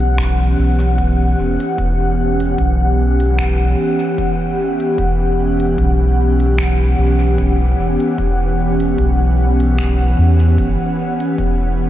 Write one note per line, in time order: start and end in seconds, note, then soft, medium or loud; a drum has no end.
0.00 0.55 B1 medium
0.00 11.90 E3 medium
0.00 11.90 B3 medium
0.00 11.90 C#4 medium
0.00 11.90 G4 medium
0.00 11.90 F#5 medium
0.00 closed hi-hat medium
0.18 finger snap medium
0.18 kick medium
0.18 closed hi-hat soft
0.58 1.35 B1 medium
0.80 closed hi-hat medium
0.98 kick loud
0.98 closed hi-hat soft
1.38 1.57 E1 medium
1.60 closed hi-hat medium
1.78 2.55 E1 loud
1.78 kick loud
1.78 closed hi-hat soft
2.40 closed hi-hat soft
2.58 3.75 B1 medium
2.58 kick medium
2.58 closed hi-hat soft
3.20 closed hi-hat soft
3.38 finger snap medium
3.38 kick loud
3.38 closed hi-hat soft
4.00 closed hi-hat medium
4.18 kick loud
4.18 closed hi-hat soft
4.80 closed hi-hat soft
4.98 5.75 E1 loud
4.98 kick loud
4.98 closed hi-hat soft
5.60 closed hi-hat soft
5.78 6.95 B1 medium
5.78 kick loud
5.78 closed hi-hat soft
6.40 closed hi-hat soft
6.58 finger snap medium
6.58 kick loud
6.58 closed hi-hat soft
6.98 7.75 B1 medium
7.20 closed hi-hat medium
7.38 kick loud
7.38 closed hi-hat soft
7.78 7.97 E1 medium
8.00 closed hi-hat soft
8.18 8.95 E1 loud
8.18 kick loud
8.18 closed hi-hat soft
8.80 closed hi-hat soft
8.98 10.15 B1 medium
8.98 kick loud
8.98 closed hi-hat soft
9.60 closed hi-hat soft
9.78 finger snap medium
9.78 kick loud
9.78 closed hi-hat soft
10.18 10.60 E2 loud
10.40 closed hi-hat soft
10.58 10.77 G1 medium
10.58 kick loud
10.58 closed hi-hat soft
11.20 closed hi-hat soft
11.38 11.90 E1 loud
11.38 kick loud
11.38 closed hi-hat soft